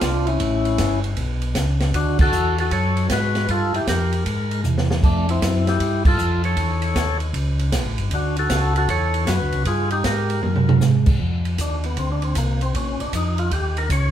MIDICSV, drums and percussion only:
0, 0, Header, 1, 2, 480
1, 0, Start_track
1, 0, Tempo, 385604
1, 500, Time_signature, 4, 2, 24, 8
1, 17565, End_track
2, 0, Start_track
2, 0, Title_t, "Drums"
2, 15, Note_on_c, 9, 38, 68
2, 15, Note_on_c, 9, 44, 59
2, 15, Note_on_c, 9, 51, 73
2, 19, Note_on_c, 9, 36, 20
2, 140, Note_off_c, 9, 38, 0
2, 140, Note_off_c, 9, 44, 0
2, 140, Note_off_c, 9, 51, 0
2, 144, Note_off_c, 9, 36, 0
2, 333, Note_on_c, 9, 51, 43
2, 457, Note_off_c, 9, 51, 0
2, 495, Note_on_c, 9, 51, 64
2, 498, Note_on_c, 9, 36, 21
2, 620, Note_off_c, 9, 51, 0
2, 623, Note_off_c, 9, 36, 0
2, 811, Note_on_c, 9, 51, 45
2, 935, Note_off_c, 9, 51, 0
2, 973, Note_on_c, 9, 38, 62
2, 973, Note_on_c, 9, 44, 56
2, 973, Note_on_c, 9, 51, 67
2, 978, Note_on_c, 9, 36, 24
2, 1098, Note_off_c, 9, 38, 0
2, 1098, Note_off_c, 9, 44, 0
2, 1098, Note_off_c, 9, 51, 0
2, 1102, Note_off_c, 9, 36, 0
2, 1293, Note_on_c, 9, 51, 46
2, 1417, Note_off_c, 9, 51, 0
2, 1451, Note_on_c, 9, 51, 61
2, 1457, Note_on_c, 9, 36, 26
2, 1576, Note_off_c, 9, 51, 0
2, 1581, Note_off_c, 9, 36, 0
2, 1763, Note_on_c, 9, 51, 43
2, 1887, Note_off_c, 9, 51, 0
2, 1928, Note_on_c, 9, 38, 68
2, 1928, Note_on_c, 9, 44, 56
2, 1928, Note_on_c, 9, 51, 64
2, 1934, Note_on_c, 9, 36, 20
2, 2053, Note_off_c, 9, 38, 0
2, 2053, Note_off_c, 9, 44, 0
2, 2053, Note_off_c, 9, 51, 0
2, 2059, Note_off_c, 9, 36, 0
2, 2245, Note_on_c, 9, 38, 55
2, 2245, Note_on_c, 9, 51, 43
2, 2370, Note_off_c, 9, 38, 0
2, 2370, Note_off_c, 9, 51, 0
2, 2415, Note_on_c, 9, 36, 20
2, 2416, Note_on_c, 9, 51, 66
2, 2539, Note_off_c, 9, 36, 0
2, 2541, Note_off_c, 9, 51, 0
2, 2724, Note_on_c, 9, 49, 78
2, 2729, Note_on_c, 9, 36, 81
2, 2848, Note_off_c, 9, 49, 0
2, 2854, Note_off_c, 9, 36, 0
2, 2895, Note_on_c, 9, 44, 64
2, 3019, Note_off_c, 9, 44, 0
2, 3215, Note_on_c, 9, 51, 46
2, 3340, Note_off_c, 9, 51, 0
2, 3375, Note_on_c, 9, 36, 25
2, 3376, Note_on_c, 9, 51, 61
2, 3500, Note_off_c, 9, 36, 0
2, 3501, Note_off_c, 9, 51, 0
2, 3694, Note_on_c, 9, 51, 45
2, 3818, Note_off_c, 9, 51, 0
2, 3854, Note_on_c, 9, 38, 70
2, 3854, Note_on_c, 9, 44, 62
2, 3854, Note_on_c, 9, 51, 73
2, 3856, Note_on_c, 9, 36, 26
2, 3978, Note_off_c, 9, 38, 0
2, 3978, Note_off_c, 9, 44, 0
2, 3978, Note_off_c, 9, 51, 0
2, 3980, Note_off_c, 9, 36, 0
2, 4171, Note_on_c, 9, 38, 44
2, 4171, Note_on_c, 9, 51, 42
2, 4296, Note_off_c, 9, 38, 0
2, 4296, Note_off_c, 9, 51, 0
2, 4337, Note_on_c, 9, 36, 19
2, 4339, Note_on_c, 9, 51, 59
2, 4461, Note_off_c, 9, 36, 0
2, 4463, Note_off_c, 9, 51, 0
2, 4660, Note_on_c, 9, 51, 46
2, 4784, Note_off_c, 9, 51, 0
2, 4819, Note_on_c, 9, 36, 24
2, 4822, Note_on_c, 9, 38, 68
2, 4822, Note_on_c, 9, 44, 56
2, 4822, Note_on_c, 9, 51, 66
2, 4943, Note_off_c, 9, 36, 0
2, 4947, Note_off_c, 9, 38, 0
2, 4947, Note_off_c, 9, 44, 0
2, 4947, Note_off_c, 9, 51, 0
2, 5135, Note_on_c, 9, 51, 45
2, 5259, Note_off_c, 9, 51, 0
2, 5299, Note_on_c, 9, 36, 19
2, 5302, Note_on_c, 9, 51, 62
2, 5424, Note_off_c, 9, 36, 0
2, 5426, Note_off_c, 9, 51, 0
2, 5616, Note_on_c, 9, 51, 47
2, 5741, Note_off_c, 9, 51, 0
2, 5777, Note_on_c, 9, 44, 53
2, 5777, Note_on_c, 9, 47, 47
2, 5902, Note_off_c, 9, 44, 0
2, 5902, Note_off_c, 9, 47, 0
2, 5946, Note_on_c, 9, 38, 59
2, 6071, Note_off_c, 9, 38, 0
2, 6107, Note_on_c, 9, 38, 73
2, 6232, Note_off_c, 9, 38, 0
2, 6261, Note_on_c, 9, 36, 72
2, 6267, Note_on_c, 9, 49, 72
2, 6385, Note_off_c, 9, 36, 0
2, 6391, Note_off_c, 9, 49, 0
2, 6583, Note_on_c, 9, 51, 51
2, 6707, Note_off_c, 9, 51, 0
2, 6741, Note_on_c, 9, 36, 26
2, 6749, Note_on_c, 9, 38, 66
2, 6749, Note_on_c, 9, 44, 59
2, 6749, Note_on_c, 9, 51, 67
2, 6865, Note_off_c, 9, 36, 0
2, 6874, Note_off_c, 9, 38, 0
2, 6874, Note_off_c, 9, 44, 0
2, 6874, Note_off_c, 9, 51, 0
2, 7060, Note_on_c, 9, 38, 46
2, 7060, Note_on_c, 9, 51, 42
2, 7184, Note_off_c, 9, 38, 0
2, 7184, Note_off_c, 9, 51, 0
2, 7218, Note_on_c, 9, 36, 21
2, 7222, Note_on_c, 9, 51, 59
2, 7342, Note_off_c, 9, 36, 0
2, 7346, Note_off_c, 9, 51, 0
2, 7533, Note_on_c, 9, 36, 81
2, 7534, Note_on_c, 9, 49, 73
2, 7657, Note_off_c, 9, 36, 0
2, 7658, Note_off_c, 9, 49, 0
2, 7695, Note_on_c, 9, 44, 52
2, 7819, Note_off_c, 9, 44, 0
2, 8012, Note_on_c, 9, 51, 42
2, 8136, Note_off_c, 9, 51, 0
2, 8174, Note_on_c, 9, 36, 21
2, 8174, Note_on_c, 9, 51, 62
2, 8298, Note_off_c, 9, 36, 0
2, 8299, Note_off_c, 9, 51, 0
2, 8487, Note_on_c, 9, 51, 50
2, 8612, Note_off_c, 9, 51, 0
2, 8654, Note_on_c, 9, 36, 25
2, 8659, Note_on_c, 9, 38, 67
2, 8659, Note_on_c, 9, 44, 60
2, 8659, Note_on_c, 9, 51, 64
2, 8779, Note_off_c, 9, 36, 0
2, 8784, Note_off_c, 9, 38, 0
2, 8784, Note_off_c, 9, 44, 0
2, 8784, Note_off_c, 9, 51, 0
2, 8964, Note_on_c, 9, 51, 45
2, 9088, Note_off_c, 9, 51, 0
2, 9134, Note_on_c, 9, 36, 19
2, 9137, Note_on_c, 9, 51, 63
2, 9259, Note_off_c, 9, 36, 0
2, 9261, Note_off_c, 9, 51, 0
2, 9453, Note_on_c, 9, 51, 47
2, 9577, Note_off_c, 9, 51, 0
2, 9613, Note_on_c, 9, 38, 69
2, 9613, Note_on_c, 9, 44, 65
2, 9613, Note_on_c, 9, 51, 71
2, 9614, Note_on_c, 9, 36, 25
2, 9738, Note_off_c, 9, 36, 0
2, 9738, Note_off_c, 9, 38, 0
2, 9738, Note_off_c, 9, 44, 0
2, 9738, Note_off_c, 9, 51, 0
2, 9932, Note_on_c, 9, 51, 46
2, 10056, Note_off_c, 9, 51, 0
2, 10094, Note_on_c, 9, 51, 62
2, 10096, Note_on_c, 9, 36, 20
2, 10219, Note_off_c, 9, 51, 0
2, 10221, Note_off_c, 9, 36, 0
2, 10413, Note_on_c, 9, 51, 49
2, 10538, Note_off_c, 9, 51, 0
2, 10577, Note_on_c, 9, 38, 72
2, 10577, Note_on_c, 9, 44, 55
2, 10577, Note_on_c, 9, 51, 71
2, 10578, Note_on_c, 9, 36, 25
2, 10701, Note_off_c, 9, 38, 0
2, 10701, Note_off_c, 9, 44, 0
2, 10701, Note_off_c, 9, 51, 0
2, 10703, Note_off_c, 9, 36, 0
2, 10901, Note_on_c, 9, 51, 46
2, 11026, Note_off_c, 9, 51, 0
2, 11060, Note_on_c, 9, 36, 23
2, 11061, Note_on_c, 9, 51, 64
2, 11185, Note_off_c, 9, 36, 0
2, 11186, Note_off_c, 9, 51, 0
2, 11375, Note_on_c, 9, 51, 48
2, 11500, Note_off_c, 9, 51, 0
2, 11539, Note_on_c, 9, 38, 71
2, 11539, Note_on_c, 9, 44, 64
2, 11539, Note_on_c, 9, 51, 69
2, 11540, Note_on_c, 9, 36, 20
2, 11663, Note_off_c, 9, 38, 0
2, 11663, Note_off_c, 9, 44, 0
2, 11663, Note_off_c, 9, 51, 0
2, 11664, Note_off_c, 9, 36, 0
2, 11856, Note_on_c, 9, 51, 44
2, 11981, Note_off_c, 9, 51, 0
2, 12017, Note_on_c, 9, 51, 63
2, 12019, Note_on_c, 9, 36, 29
2, 12141, Note_off_c, 9, 51, 0
2, 12144, Note_off_c, 9, 36, 0
2, 12329, Note_on_c, 9, 51, 46
2, 12454, Note_off_c, 9, 51, 0
2, 12499, Note_on_c, 9, 38, 71
2, 12499, Note_on_c, 9, 44, 60
2, 12499, Note_on_c, 9, 51, 67
2, 12500, Note_on_c, 9, 36, 23
2, 12624, Note_off_c, 9, 36, 0
2, 12624, Note_off_c, 9, 38, 0
2, 12624, Note_off_c, 9, 44, 0
2, 12624, Note_off_c, 9, 51, 0
2, 12817, Note_on_c, 9, 51, 48
2, 12942, Note_off_c, 9, 51, 0
2, 12980, Note_on_c, 9, 48, 47
2, 13105, Note_off_c, 9, 48, 0
2, 13141, Note_on_c, 9, 47, 58
2, 13265, Note_off_c, 9, 47, 0
2, 13305, Note_on_c, 9, 47, 80
2, 13429, Note_off_c, 9, 47, 0
2, 13457, Note_on_c, 9, 38, 58
2, 13457, Note_on_c, 9, 44, 65
2, 13582, Note_off_c, 9, 38, 0
2, 13582, Note_off_c, 9, 44, 0
2, 13769, Note_on_c, 9, 49, 71
2, 13776, Note_on_c, 9, 36, 69
2, 13893, Note_off_c, 9, 49, 0
2, 13900, Note_off_c, 9, 36, 0
2, 13941, Note_on_c, 9, 36, 24
2, 14066, Note_off_c, 9, 36, 0
2, 14255, Note_on_c, 9, 51, 43
2, 14379, Note_off_c, 9, 51, 0
2, 14418, Note_on_c, 9, 44, 61
2, 14418, Note_on_c, 9, 51, 64
2, 14421, Note_on_c, 9, 36, 21
2, 14543, Note_off_c, 9, 44, 0
2, 14543, Note_off_c, 9, 51, 0
2, 14546, Note_off_c, 9, 36, 0
2, 14733, Note_on_c, 9, 51, 44
2, 14858, Note_off_c, 9, 51, 0
2, 14897, Note_on_c, 9, 51, 56
2, 14900, Note_on_c, 9, 36, 21
2, 15022, Note_off_c, 9, 51, 0
2, 15025, Note_off_c, 9, 36, 0
2, 15211, Note_on_c, 9, 51, 41
2, 15335, Note_off_c, 9, 51, 0
2, 15376, Note_on_c, 9, 44, 57
2, 15376, Note_on_c, 9, 51, 70
2, 15381, Note_on_c, 9, 36, 24
2, 15500, Note_off_c, 9, 44, 0
2, 15500, Note_off_c, 9, 51, 0
2, 15506, Note_off_c, 9, 36, 0
2, 15698, Note_on_c, 9, 51, 42
2, 15822, Note_off_c, 9, 51, 0
2, 15862, Note_on_c, 9, 36, 19
2, 15867, Note_on_c, 9, 51, 58
2, 15987, Note_off_c, 9, 36, 0
2, 15991, Note_off_c, 9, 51, 0
2, 16184, Note_on_c, 9, 51, 48
2, 16308, Note_off_c, 9, 51, 0
2, 16341, Note_on_c, 9, 36, 21
2, 16343, Note_on_c, 9, 44, 54
2, 16343, Note_on_c, 9, 51, 68
2, 16466, Note_off_c, 9, 36, 0
2, 16468, Note_off_c, 9, 44, 0
2, 16468, Note_off_c, 9, 51, 0
2, 16655, Note_on_c, 9, 51, 43
2, 16780, Note_off_c, 9, 51, 0
2, 16821, Note_on_c, 9, 36, 23
2, 16822, Note_on_c, 9, 51, 59
2, 16946, Note_off_c, 9, 36, 0
2, 16946, Note_off_c, 9, 51, 0
2, 17138, Note_on_c, 9, 51, 48
2, 17263, Note_off_c, 9, 51, 0
2, 17302, Note_on_c, 9, 36, 25
2, 17302, Note_on_c, 9, 44, 55
2, 17302, Note_on_c, 9, 51, 67
2, 17426, Note_off_c, 9, 36, 0
2, 17427, Note_off_c, 9, 44, 0
2, 17427, Note_off_c, 9, 51, 0
2, 17565, End_track
0, 0, End_of_file